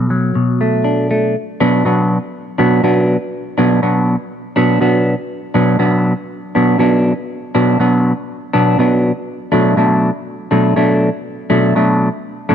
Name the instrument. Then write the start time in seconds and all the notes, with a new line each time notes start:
clean electric guitar
Already playing: B2 A3 D4
0.10 F#3
0.35 B2
0.61 A3
0.84 D4
1.11 A3
1.60 B2 F#3 B3 D4
1.85 B2 F#3 B3 D4
2.58 B2 F#3 B3 D4
2.83 B2 F#3 B3 D4
3.58 B2 F#3 B3 D4
3.82 B2 F#3 B3 D4
4.56 B2 F#3 B3 D4
4.81 B2 F#3 B3 D4
5.54 B2 F#3 B3 D4
5.79 B2 F#3 B3 D4
6.55 B2 F#3 B3 D4
6.78 B2 F#3 B3 D4
7.55 B2 F#3 B3 D4
7.79 B2 F#3 B3 D4
8.53 B2 F#3 B3 D4
8.78 B2 F#3 B3 D4
9.52 B2 F#3 A3 D4
9.76 B2 F#3 A3 D4
10.51 B2 F#3 A3 D4
10.76 B2 F#3 A3 D4
11.50 B2 F#3 A3 D4
11.75 B2 F#3 A3 D4
12.49 B2 F#3 A3 D4